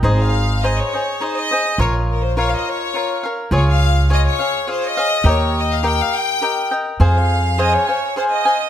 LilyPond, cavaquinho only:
\new Staff \with { instrumentName = "Cavaquinho" } { \time 3/4 \key aes \major \tempo 4 = 104 <ees' aes' c'' ees''>4 <ees' aes' c'' ees''>8 <aes' c'' ees''>8 <ees' aes' c'' ees''>8 <aes' c'' ees''>8 | <f' bes' des'' f''>4 <f' bes' des'' f''>4 <f' bes' des'' f''>8 <bes' des'' f''>8 | <f' aes' des'' f''>4 <f' aes' des'' f''>8 <aes' des'' f''>8 <f' aes' des'' f''>8 <aes' des'' f''>8 | <g' bes' ees'' g''>4 <g' bes' ees'' g''>4 <g' bes' ees'' g''>8 <bes' ees'' g''>8 |
<aes' c'' f'' aes''>4 <aes' c'' f'' aes''>8 <c'' f'' aes''>8 <aes' c'' f'' aes''>8 <c'' f'' aes''>8 | }